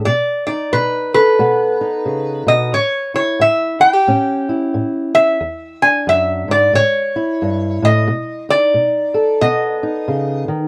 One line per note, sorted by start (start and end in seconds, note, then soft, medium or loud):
0.05 0.67 B2 medium
0.05 0.45 D5 medium
0.47 1.80 D#4 medium
0.47 0.73 D5 medium
0.73 1.34 B2 medium
0.73 1.13 B4 medium
1.14 2.70 A4 medium
1.14 2.43 B4 medium
1.39 2.01 B2 medium
1.39 2.70 B3 medium
1.81 2.70 D#4 medium
2.05 2.46 C#3 medium
2.47 2.72 B2 medium
2.47 2.74 D#5 medium
2.73 3.34 A2 medium
2.73 3.11 C#5 medium
3.14 3.79 E4 soft
3.14 3.41 C#5 medium
3.39 4.01 A2 medium
3.39 3.80 E5 medium
3.80 3.93 E4 medium
3.80 5.18 G5 medium
3.93 5.40 G4 medium
4.08 4.68 A2 medium
4.08 5.14 C#4 medium
4.49 5.38 E4 medium
4.74 5.35 A2 medium
5.15 5.37 C#4 medium
5.15 5.83 E5 medium
5.40 6.02 E2 medium
5.82 6.71 D4 medium
5.82 6.05 G#5 medium
6.07 6.48 F#2 medium
6.07 6.46 E5 medium
6.48 6.73 G#2 medium
6.48 6.73 D5 medium
6.73 7.35 A2 medium
6.73 7.84 C#5 medium
7.16 8.04 E4 medium
7.42 7.82 G2 medium
7.82 8.07 A2 medium
7.82 8.45 D#5 medium
8.08 8.69 B2 medium
8.49 9.82 D#4 soft
8.49 9.41 D5 medium
8.74 9.35 B2 medium
9.14 10.68 A4 medium
9.41 10.02 B2 medium
9.41 10.68 B3 medium
9.41 10.44 D#5 medium
9.83 10.68 D#4 medium
10.08 10.48 C#3 medium
10.48 10.68 D#3 medium